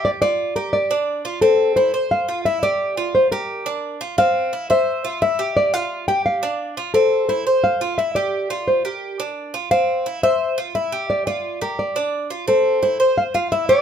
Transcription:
Already playing: cuban tres G4
0.05 nylon-string guitar D5
0.22 cuban tres F4, nylon-string guitar D5
0.56 cuban tres G4, nylon-string guitar A#4
0.73 nylon-string guitar D5
0.91 cuban tres D4
1.25 cuban tres F4
1.41 cuban tres C4, nylon-string guitar A4
1.76 cuban tres E4, nylon-string guitar C5
1.94 cuban tres C5
2.11 nylon-string guitar F5
2.28 cuban tres F4
2.45 cuban tres E4, nylon-string guitar E5
2.63 cuban tres G4, nylon-string guitar D5
2.97 cuban tres F4
3.15 nylon-string guitar C5
3.32 cuban tres G4, nylon-string guitar A#4
3.66 cuban tres D4
4.01 cuban tres F4
4.18 cuban tres C4, nylon-string guitar F5
4.53 cuban tres E4
4.70 cuban tres C5, nylon-string guitar E5
5.05 cuban tres F4
5.22 cuban tres E4, nylon-string guitar E5
5.39 cuban tres G4
5.57 nylon-string guitar D5
5.74 cuban tres F4, nylon-string guitar F5
6.08 cuban tres G4, nylon-string guitar G5
6.26 nylon-string guitar F5
6.43 cuban tres D4
6.77 cuban tres F4
6.94 cuban tres C4, nylon-string guitar A4
7.29 cuban tres E4, nylon-string guitar C5
7.47 cuban tres C5
7.64 nylon-string guitar F5
7.81 cuban tres F4
7.98 cuban tres E4, nylon-string guitar E5
8.15 cuban tres G4, nylon-string guitar D5
8.50 cuban tres F4
8.68 nylon-string guitar C5
8.85 cuban tres G4, nylon-string guitar A#4
9.20 cuban tres D4
9.54 cuban tres F4
9.71 cuban tres C4, nylon-string guitar F5
10.06 cuban tres E4
10.23 cuban tres C5, nylon-string guitar E5
10.58 cuban tres F4
10.75 cuban tres E4, nylon-string guitar E5
10.92 cuban tres G4
11.10 nylon-string guitar D5
11.27 cuban tres F4, nylon-string guitar D5
11.61 cuban tres G4, nylon-string guitar A#4
11.79 nylon-string guitar D5
11.96 cuban tres D4
12.30 cuban tres F4
12.48 cuban tres C4, nylon-string guitar A4
12.82 cuban tres E4, nylon-string guitar C5
13.00 cuban tres C5
13.18 nylon-string guitar F5
13.34 cuban tres F4, nylon-string guitar F5
13.52 cuban tres E4, nylon-string guitar E5
13.69 cuban tres G4, nylon-string guitar D5

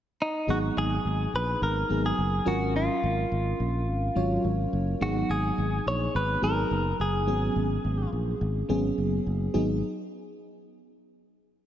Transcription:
0.22 clean electric guitar D#4
0.47 fretless electric bass G#1, fm electric piano F#3 B3 D#4 G#4, clean electric guitar F#4
0.77 fretless electric bass G#1, clean electric guitar G#4
1.05 fretless electric bass G#1
1.34 fretless electric bass A#1, clean electric guitar B4
1.62 fretless electric bass G#1, clean electric guitar A#4
1.89 fretless electric bass G#1, fm electric piano F#3 B3 D#4 G#4
2.06 clean electric guitar G#4
2.18 fretless electric bass F#1
2.45 fretless electric bass G#1, fm electric piano F#3 C#4 F4 A#4, clean electric guitar F#4
2.76 clean electric guitar F4
3.03 fretless electric bass G#1
3.32 fretless electric bass G#1
3.60 fretless electric bass A#1
3.88 fretless electric bass G#1
4.15 fretless electric bass G#1, fm electric piano F#3 C#4 F4 C#5
4.44 fretless electric bass G#1
4.73 fretless electric bass F#1
5.00 fretless electric bass G#1, fm electric piano F#3 B3 D#4 G#4, clean electric guitar F#4
5.30 fretless electric bass G#1, clean electric guitar G#4
5.58 fretless electric bass G#1
5.86 fretless electric bass A#1, clean electric guitar C#5
6.15 fretless electric bass G#1, clean electric guitar B4
6.42 fretless electric bass G#1, fm electric piano F#3 B3 D#4 G#4, clean electric guitar A#4
6.71 fretless electric bass F#1
7.00 fretless electric bass F#1, clean electric guitar G#4
7.27 fretless electric bass G#1, fm electric piano F#3 B3 C#4 G#4
7.56 fretless electric bass G#1
7.85 fretless electric bass G#1
8.13 fretless electric bass A#1
8.41 fretless electric bass G#1
8.69 fretless electric bass G#1, fm electric piano F#3 B3 C#4 G#4
8.98 fretless electric bass F#1
9.27 fretless electric bass F#1
9.54 fretless electric bass G#1, fm electric piano F#3 B3 D#4 G#4

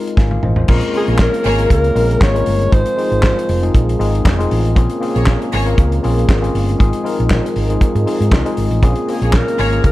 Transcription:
Already playing: tine electric piano G#3 C4 D#4 F4 A#4
0.07 closed hi-hat
0.17 fingered electric bass G#1, tine electric piano F5 G#5, kick, snare
0.31 tine electric piano F5, high tom
0.43 fingered electric bass A1, tine electric piano C5 D#5, mid tom
0.56 tine electric piano G#4 C5, floor tom
0.68 fingered electric bass A#1, french horn section C#3 G#3 A#3, tine electric piano G#3 C4 C#4 F4 A#4, kick, crash
0.81 closed hi-hat
0.94 tine electric piano G#3 C4 C#4 F4 A#4, alto saxophone G#4, open hi-hat
1.08 fingered electric bass A#1, string section A#3 G#4 C#5, closed hi-hat
1.18 alto saxophone A#4, kick, snare, clap
1.34 closed hi-hat
1.44 fingered electric bass G#1, string section A#3 G#4 C#5, open hi-hat
1.58 tine electric piano G#3 C4 C#4 F4 A#4, closed hi-hat
1.70 fingered electric bass C#2, alto saxophone A#4, kick, closed hi-hat
1.84 closed hi-hat
1.95 fingered electric bass A#1, tine electric piano G#3 C4 C#4 F4 A#4, open hi-hat
2.11 closed hi-hat
2.21 fingered electric bass G#1, alto saxophone C#5, kick, snare, clap
2.34 tine electric piano G#3 A#3 C#4 F4 A#4, closed hi-hat
2.46 fingered electric bass G1, open hi-hat
2.61 closed hi-hat
2.72 fingered electric bass G#1, french horn section D#3 F3, tine electric piano G#3 C4 D#4 F4 G#4, alto saxophone C5, kick, closed hi-hat
2.86 closed hi-hat
2.97 tine electric piano G#3 C4 D#4 F4 G#4, open hi-hat
3.12 fingered electric bass G#1, closed hi-hat
3.23 kick, snare, clap
3.39 closed hi-hat
3.49 fingered electric bass F1, open hi-hat
3.62 tine electric piano G#3 C4 D#4 F4 G#4, closed hi-hat
3.75 fingered electric bass A#1, kick, closed hi-hat
3.89 closed hi-hat
3.99 fingered electric bass G#1, tine electric piano G#3 C4 D#4 F4 G#4, open hi-hat
4.15 closed hi-hat
4.25 fingered electric bass F1, kick, snare, clap
4.38 tine electric piano G#3 C4 D#4 F4 G#4, closed hi-hat
4.51 fingered electric bass A1, open hi-hat
4.65 closed hi-hat
4.75 fingered electric bass A#1, french horn section C#3 A#3, tine electric piano A#3 C4 C#4 F4 G#4, kick, closed hi-hat
4.90 closed hi-hat
5.00 tine electric piano A#3 C4 C#4 F4 G#4, open hi-hat
5.15 fingered electric bass A#1, string section A#3 G#4 C#5, closed hi-hat
5.26 kick, snare, clap
5.42 closed hi-hat
5.52 fingered electric bass G#1, string section A#3 G#4 C#5, open hi-hat
5.65 tine electric piano A#3 C4 C#4 F4 A#4, closed hi-hat
5.78 fingered electric bass C#2, kick, closed hi-hat
5.92 closed hi-hat
6.03 fingered electric bass A#1, tine electric piano A#3 C4 C#4 F4 G#4, open hi-hat
6.19 closed hi-hat
6.29 fingered electric bass G#1, kick, snare, clap
6.41 tine electric piano A#3 C4 C#4 F4 G#4, closed hi-hat
6.55 fingered electric bass G1, open hi-hat
6.69 closed hi-hat
6.78 fingered electric bass G#1, french horn section D#3 F3, tine electric piano G#3 C4 D#4 F4 G#4, kick, closed hi-hat
6.93 closed hi-hat
7.03 tine electric piano G#3 C4 D#4 F4 A#4, open hi-hat
7.20 fingered electric bass A#1, closed hi-hat
7.30 kick, snare, clap
7.46 closed hi-hat
7.56 fingered electric bass G#1, open hi-hat
7.69 tine electric piano G#3 C4 D#4 F4 G#4, closed hi-hat
7.81 kick, closed hi-hat
7.95 fingered electric bass G#2, closed hi-hat
8.06 tine electric piano G#3 C4 D#4 F4 G#4, open hi-hat
8.20 fingered electric bass G#2, closed hi-hat
8.31 fingered electric bass C2, kick, snare, clap
8.45 tine electric piano G#3 C4 D#4 F4 G#4, closed hi-hat
8.57 fingered electric bass G#1, open hi-hat
8.71 fingered electric bass A1, closed hi-hat
8.83 fingered electric bass A#1, french horn section C#3 A#3, tine electric piano A#3 C4 C#4 F4 G#4, kick, closed hi-hat
8.95 closed hi-hat
9.08 tine electric piano A#3 C4 C#4 F4 G#4, alto saxophone G#4, open hi-hat
9.22 fingered electric bass A#1, string section A#3 G#4 C#5, closed hi-hat
9.33 alto saxophone A#4, kick, snare, clap
9.48 closed hi-hat
9.58 fingered electric bass G#1, string section A#3 G#4 C#5, open hi-hat
9.71 tine electric piano A#3 C4 C#4 F4 G#4, closed hi-hat
9.84 fingered electric bass C#2, alto saxophone A#4, kick, closed hi-hat

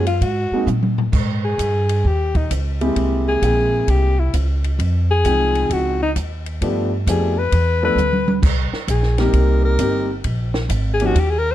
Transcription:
Already playing: upright bass F#2
0.07 alto saxophone F4, ride
0.21 upright bass G#2, alto saxophone F#4, kick, ride
0.51 grand piano G#3 A#3 C4 D#4 F#4, muted upright bass stroke
0.67 upright bass A#2, hi-hat pedal, high tom
0.83 high tom
0.98 floor tom
1.12 upright bass G#2, kick, crash
1.45 alto saxophone G#4
1.58 upright bass G2, kick, hi-hat pedal, ride
1.89 ride
2.05 upright bass D#2, alto saxophone G4, kick
2.35 alto saxophone D#4, kick, ride
2.50 upright bass C#2, kick, hi-hat pedal, ride
2.81 grand piano G#3 A#3 C4 E4 G4, ride
2.96 upright bass C2, kick, ride
3.29 alto saxophone G#4
3.42 upright bass A#1, grand piano G#3 A#3 C4 E4 G5, kick, hi-hat pedal, ride
3.88 upright bass C2, alto saxophone G4, kick, ride
4.20 alto saxophone E4
4.33 upright bass C#2, kick, hi-hat pedal, ride
4.64 ride
4.79 upright bass F2, kick, ride
5.11 alto saxophone G#4
5.24 upright bass C2, grand piano F3 G#3 C4 D#4 G5, kick, hi-hat pedal, ride
5.55 ride
5.70 upright bass C#2, alto saxophone F#4, kick, ride
6.03 alto saxophone D#4
6.16 upright bass D#2, kick, hi-hat pedal, ride
6.46 ride
6.62 upright bass G2, grand piano F3 A3 B3 D4 G4, kick, ride
7.07 upright bass F2, grand piano F3 A3 B3 D4 G4, alto saxophone G#4, kick, hi-hat pedal, ride
7.39 alto saxophone B4
7.52 upright bass E2, kick, ride
7.82 grand piano F3 A3 B3 D4 A4, alto saxophone B4
7.95 upright bass D2, hi-hat pedal, high tom
8.13 high tom
8.28 high tom
8.42 upright bass C2, kick, crash
8.72 muted upright bass stroke, snare
8.88 upright bass A#1, alto saxophone G#4, kick, hi-hat pedal, ride
9.03 snare
9.18 grand piano G3 A#3 C4 D#4 G4, alto saxophone A#4, snare, ride
9.33 upright bass C2, kick, ride
9.65 alto saxophone A#4
9.79 upright bass G1, grand piano G3 A#3 C4 D#4 G4, kick, hi-hat pedal, ride
10.24 upright bass A#1, kick, ride
10.54 snare
10.69 upright bass G#1, kick, hi-hat pedal, ride
10.94 alto saxophone G#4
11.00 grand piano F3 A#3 C#4 D#4 G4, ride
11.06 alto saxophone F#4
11.15 upright bass D#2, kick, ride
11.20 alto saxophone G4
11.30 alto saxophone G#4
11.39 alto saxophone A#4
11.52 alto saxophone C5

